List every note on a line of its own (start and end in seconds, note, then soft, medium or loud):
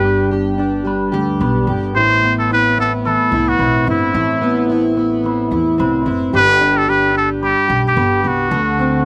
0.00 1.09 G1 medium
0.00 1.95 G2 medium
0.00 0.84 G3 medium
0.00 1.96 G3 medium
0.00 1.40 B3 medium
0.00 0.31 D4 soft
0.00 0.57 D4 soft
0.00 0.30 G4 medium
0.00 0.28 B4 medium
0.00 0.87 B4 medium
0.05 0.58 G4 medium
0.31 2.02 D4 soft
0.31 1.11 G4 medium
0.58 2.01 D4 soft
0.58 1.12 G4 soft
0.85 2.00 G3 medium
0.85 1.41 B4 medium
1.12 1.39 D2 medium
1.12 1.67 G4 medium
1.12 1.68 G4 soft
1.40 1.66 B1 medium
1.40 2.23 B3 soft
1.40 2.54 B4 medium
1.67 1.95 G1 medium
1.67 1.96 G4 soft
1.67 2.02 G4 medium
1.95 3.15 A1 medium
1.95 4.14 A2 medium
1.95 4.14 A3 medium
1.95 2.50 E4 medium
1.95 2.34 C5 loud
2.23 2.78 B3 soft
2.23 2.78 E4 medium
2.39 2.51 A4 medium
2.51 4.69 C4 soft
2.51 3.32 E4 medium
2.51 2.77 B4 medium
2.78 4.41 B3 medium
2.78 3.32 E4 medium
2.78 2.92 A4 medium
3.06 5.22 E3 medium
3.06 3.50 A4 medium
3.06 3.60 B4 medium
3.32 3.57 C2 medium
3.32 3.86 E4 soft
3.32 3.88 E4 medium
3.49 3.88 F#4 medium
3.59 3.85 B1 medium
3.59 5.77 C4 medium
3.59 5.26 B4 medium
3.87 4.12 G1 medium
3.87 4.41 E4 medium
3.87 4.14 E4 soft
3.87 4.67 E4 medium
4.14 5.47 A1 medium
4.14 6.33 A2 medium
4.14 6.34 A3 medium
4.14 4.68 E4 medium
4.41 4.97 B3 medium
4.41 4.96 E4 medium
4.70 6.34 C4 soft
4.70 5.50 E4 medium
4.97 6.61 B3 medium
4.97 5.52 E4 medium
5.24 6.39 E3 medium
5.24 5.80 B4 medium
5.51 5.77 E2 medium
5.51 6.04 E4 medium
5.51 6.06 E4 soft
5.78 6.04 C2 medium
5.78 6.38 C4 medium
5.78 7.42 B4 medium
6.06 6.31 F#1 medium
6.06 6.33 E4 medium
6.06 6.39 E4 medium
6.33 7.52 G1 medium
6.33 8.52 G2 medium
6.33 6.89 D4 medium
6.33 6.87 G4 medium
6.33 6.79 B4 loud
6.61 7.14 D4 medium
6.61 7.14 G4 medium
6.77 6.91 A4 medium
6.88 9.05 D4 soft
6.88 7.67 G4 medium
6.88 7.16 B4 medium
7.14 8.79 D4 medium
7.14 7.69 G4 soft
7.14 7.29 A4 medium
7.43 8.51 G3 medium
7.43 7.82 G4 medium
7.43 7.96 B4 medium
7.68 7.95 B1 medium
7.68 8.22 G4 medium
7.68 8.25 G4 medium
7.87 8.29 G4 medium
7.97 8.22 G1 medium
7.97 8.57 B3 medium
7.97 8.57 B4 medium
8.24 8.49 C2 medium
8.24 9.05 F#4 medium
8.24 8.51 G4 medium
8.51 9.05 D2 medium
8.51 9.05 D3 medium
8.51 9.05 A3 medium
8.51 9.05 F#4 medium
8.79 9.05 C4 medium
8.79 9.05 F#4 medium